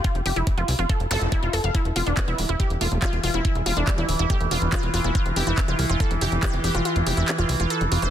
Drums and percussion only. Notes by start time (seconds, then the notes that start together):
0.04 kick, closed hi-hat
0.15 closed hi-hat
0.26 open hi-hat
0.36 closed hi-hat
0.47 kick, closed hi-hat
0.58 closed hi-hat
0.68 open hi-hat
0.79 closed hi-hat
0.89 kick, closed hi-hat
1.00 closed hi-hat
1.11 open hi-hat
1.21 closed hi-hat
1.32 kick, closed hi-hat
1.43 closed hi-hat
1.53 open hi-hat
1.64 closed hi-hat
1.75 kick, closed hi-hat
1.85 closed hi-hat
1.96 open hi-hat
2.07 closed hi-hat
2.17 kick, clap, closed hi-hat
2.28 closed hi-hat
2.38 open hi-hat
2.49 closed hi-hat
2.60 kick, closed hi-hat
2.70 closed hi-hat
2.81 open hi-hat
2.92 closed hi-hat
3.02 kick, clap, closed hi-hat
3.13 closed hi-hat
3.24 open hi-hat
3.34 closed hi-hat
3.45 kick, closed hi-hat
3.55 closed hi-hat
3.66 open hi-hat
3.77 closed hi-hat
3.87 kick, clap, closed hi-hat
3.98 closed hi-hat
4.09 open hi-hat
4.19 closed hi-hat
4.30 kick, closed hi-hat
4.41 closed hi-hat
4.51 open hi-hat
4.62 closed hi-hat
4.72 kick, clap, closed hi-hat
4.83 closed hi-hat
4.94 open hi-hat
5.04 closed hi-hat
5.15 kick, closed hi-hat
5.26 closed hi-hat
5.36 open hi-hat
5.47 closed hi-hat
5.58 kick, clap, closed hi-hat
5.68 closed hi-hat
5.79 open hi-hat
5.89 closed hi-hat
6.00 kick, closed hi-hat
6.11 closed hi-hat
6.21 open hi-hat
6.32 closed hi-hat
6.43 kick, clap, closed hi-hat
6.53 closed hi-hat
6.64 open hi-hat
6.75 closed hi-hat
6.85 closed hi-hat
6.96 closed hi-hat
7.07 open hi-hat
7.17 closed hi-hat
7.28 clap, closed hi-hat
7.38 closed hi-hat
7.49 open hi-hat
7.60 closed hi-hat
7.70 closed hi-hat
7.81 closed hi-hat
7.92 open hi-hat
8.02 closed hi-hat